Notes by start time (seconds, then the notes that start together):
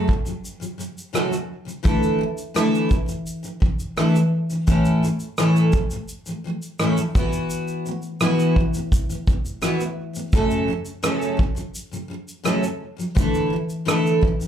0.08 F#2 C#3 F#3, kick
0.25 F#2 C#3 F#3, shaker
0.45 shaker
0.60 F#2 C#3 F#3, shaker
0.78 F#2 C#3 F#3, shaker
0.98 shaker
1.13 F#2 C#3 F#3 A3 F#4 A4, cross-stick, shaker
1.30 F#2 C#3 F#3, cross-stick, shaker
1.65 F#2 C#3 F#3, shaker
1.83 D3 E3 A3 E4 A4, kick, shaker
2.03 shaker
2.19 D3 E3
2.38 shaker
2.54 D3 E3 A3 E4 A4, cross-stick, shaker
2.75 shaker
2.89 D3 E3, kick, shaker
3.06 D3 E3, shaker
3.27 shaker
3.43 D3 E3, shaker
3.60 D3 E3, kick
3.80 shaker
3.97 D3 E3 A3 E4 A4, cross-stick, shaker
4.14 D3 E3, shaker
4.50 D3 E3, shaker
4.67 A2 E3 A3 C#4 E4 A4, kick, shaker
4.85 shaker
5.03 A2 E3 A3, shaker
5.20 shaker
5.38 A2 E3 A3 C#4 E4 A4, cross-stick, shaker
5.56 shaker
5.72 A2, kick, shaker
5.91 A2 E3 A3, shaker
6.09 shaker
6.26 A2 E3 A3, shaker
6.44 A2 E3 A3
6.62 shaker
6.79 A2 E3 A3 C#4 E4 A4, cross-stick, shaker
6.96 A2 E3 A3, shaker
7.15 E3 B3 E4 F#4, kick, shaker
7.33 shaker
7.50 shaker
7.68 shaker
7.86 E3 B3, shaker
8.02 shaker
8.20 E3 B3 E4 F#4, cross-stick, shaker
8.39 shaker
8.56 E3 B3, kick
8.74 E3 B3, shaker
8.92 kick, shaker
9.09 E3 B3, shaker
9.27 E3 B3, kick, shaker
9.45 shaker
9.62 E3 B3 E4 F#4, cross-stick, shaker
9.78 E3 B3, cross-stick, shaker
10.13 E3 B3, shaker
10.33 F#2 C#3 F#3 A3 C#4 A4, kick, shaker
10.51 shaker
10.68 F#2 C#3 F#3
10.85 shaker
11.03 F#2 C#3 F#3 A3 C#4 A4, cross-stick, shaker
11.22 shaker
11.37 F#2 C#3 F#3, kick
11.55 F#2 C#3 F#3, shaker
11.75 shaker
11.91 F#2 C#3 F#3, shaker
12.08 F#2 C#3 F#3
12.28 shaker
12.43 F#2 C#3 F#3 A3 C#4 A4, cross-stick, shaker
12.62 F#2 C#3 F#3, shaker
12.97 F#2 C#3 F#3, shaker
13.15 D3 E3 A3 E4 A4, kick, shaker
13.34 shaker
13.50 D3 E3
13.70 shaker
13.85 D3 E3 A3 E4 A4, cross-stick, shaker
14.07 shaker
14.21 D3 E3, kick
14.40 D3 E3, shaker